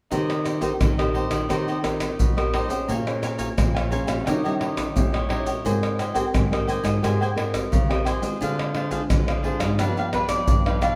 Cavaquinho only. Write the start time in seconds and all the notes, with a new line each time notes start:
0.11 D#4 G4 C5 D#5
0.44 D#4 G4 C5 D#5
0.61 D#4 G4 C5 D#5
0.98 G4 C5 D#5
1.14 D#4 G4 C5 D#5
1.31 G4 C5 D#5
1.49 D#4 G4 C5 D#5
1.68 D#4 G4 C5 D#5
1.83 D#4 G4 C5 D#5
2.37 G4 C5 D#5
2.53 D#4 G4 C5 D#5
2.70 G4 C5 D#5
2.88 A#4 C#5 F5 G#5
3.22 A#4 C#5 F5 G#5
3.38 A#4 C#5 F5 G#5
3.75 C#5 F5 G#5
3.91 A#4 C#5 F5 G#5
4.07 C#5 F5 G#5
4.26 D#4 G4 C#5 D#5
4.44 D#4 G4 C#5 D#5
4.60 D#4 G4 C#5 D#5
5.13 G4 C#5 D#5
5.29 D#4 G4 C#5 D#5
5.45 G4 C#5 D#5
5.65 C5 D#5 G#5
5.99 G4 C5 D#5 G#5
6.14 G4 C5 D#5 G#5
6.52 C5 D#5 G#5
6.67 G4 C5 D#5 G#5
6.84 C5 D#5 G#5
7.03 G4 C5 D#5 G#5
7.21 G4 C5 D#5 G#5
7.38 C5 D#5 G#5
7.90 C5 D#5 G#5
8.05 G4 C5 D#5 G#5
8.22 C5 D#5 G#5
8.41 D4 G#4 C5 F5
8.75 D4 G#4 C5 F5
8.91 D4 G#4 C5 F5
9.29 G#4 C5 F5
9.43 D4 G#4 C5 F5
9.60 G#4 C5 F5
9.78 D4 G4 B4 F5
9.97 D4 G4 B4 F5
10.13 D4 G4 B4 F5
10.66 G4 B4 F5
10.82 D4 G4 B4 F5